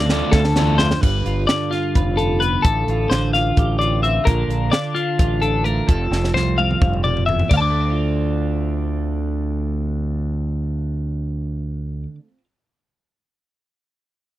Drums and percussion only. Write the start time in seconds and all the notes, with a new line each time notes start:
0.09 snare
0.32 kick, snare
0.44 snare
0.56 snare
0.79 snare
0.91 snare
1.03 kick, crash
1.26 closed hi-hat
1.49 snare, closed hi-hat
1.72 snare, closed hi-hat
1.95 kick, closed hi-hat
2.18 closed hi-hat
2.42 closed hi-hat
2.64 kick, closed hi-hat
2.88 closed hi-hat
3.11 snare, closed hi-hat
3.34 snare, closed hi-hat
3.57 kick, closed hi-hat
3.81 closed hi-hat
4.04 closed hi-hat
4.27 kick, closed hi-hat
4.50 closed hi-hat
4.73 snare, closed hi-hat
4.96 closed hi-hat
5.19 kick, closed hi-hat
5.42 closed hi-hat
5.65 closed hi-hat
5.89 kick, closed hi-hat
6.13 snare
6.24 snare
6.36 snare
6.48 high tom
6.59 high tom
6.71 mid tom
6.82 kick, mid tom
6.94 mid tom
7.05 mid tom
7.17 floor tom
7.29 floor tom
7.39 floor tom
7.51 kick, crash